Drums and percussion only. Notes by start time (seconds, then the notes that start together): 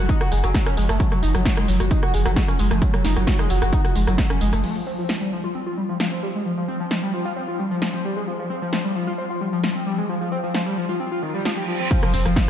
0.09 kick, closed hi-hat, tambourine
0.21 cross-stick, closed hi-hat
0.32 open hi-hat, tambourine
0.44 cross-stick, closed hi-hat, tambourine
0.54 kick, snare, closed hi-hat, tambourine
0.66 cross-stick, closed hi-hat, tambourine
0.77 open hi-hat, tambourine
0.89 cross-stick, closed hi-hat, tambourine
1.00 kick, closed hi-hat, tambourine
1.12 cross-stick, closed hi-hat
1.23 open hi-hat, tambourine
1.35 cross-stick, closed hi-hat, tambourine
1.45 kick, snare, closed hi-hat, tambourine
1.57 cross-stick, closed hi-hat
1.68 open hi-hat, tambourine
1.80 cross-stick, closed hi-hat, tambourine
1.91 kick, closed hi-hat, tambourine
2.03 cross-stick, closed hi-hat
2.14 open hi-hat, tambourine
2.26 cross-stick, closed hi-hat, tambourine
2.36 kick, snare, closed hi-hat, tambourine
2.48 cross-stick, closed hi-hat, tambourine
2.59 open hi-hat, tambourine
2.71 cross-stick, closed hi-hat, tambourine
2.82 kick, closed hi-hat, tambourine
2.94 cross-stick, closed hi-hat
3.05 snare, open hi-hat, tambourine
3.16 cross-stick, closed hi-hat, tambourine
3.27 kick, snare, closed hi-hat, tambourine
3.39 cross-stick, closed hi-hat, tambourine
3.50 open hi-hat, tambourine
3.62 cross-stick, closed hi-hat, tambourine
3.73 kick, closed hi-hat, tambourine
3.85 cross-stick, closed hi-hat, tambourine
3.96 open hi-hat, tambourine
4.07 cross-stick, closed hi-hat, tambourine
4.18 kick, snare, closed hi-hat, tambourine
4.30 cross-stick, closed hi-hat, tambourine
4.41 open hi-hat, tambourine
4.53 cross-stick, closed hi-hat, tambourine
4.64 crash
5.09 snare
6.00 snare
6.91 snare
7.82 snare
8.73 snare
9.64 snare
10.54 snare
11.45 snare
11.91 kick, closed hi-hat, tambourine, crash
12.03 cross-stick, closed hi-hat
12.14 open hi-hat, tambourine
12.26 cross-stick, closed hi-hat, tambourine
12.36 kick, snare, closed hi-hat, tambourine